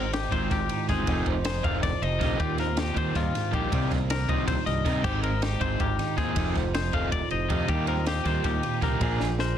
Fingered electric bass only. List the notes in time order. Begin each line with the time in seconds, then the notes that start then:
Already playing: G#1
0.32 G#1
0.51 G#1
0.89 G1
1.08 F1
1.27 F1
1.64 F1
1.84 F1
2.02 F1
2.21 A#1
2.40 D#2
2.96 D#2
3.16 D#2
3.53 A#1
3.72 C2
3.91 C2
4.29 C2
4.48 C2
4.67 C2
4.86 C3
5.04 G#1
5.61 G#1
5.80 G#1
6.18 D#2
6.36 F1
6.56 F1
6.93 F1
7.12 F1
7.32 F1
7.50 F2
7.69 D#2
8.26 D#2
8.45 D#2
8.82 C2
9.01 A#1
9.22 A#1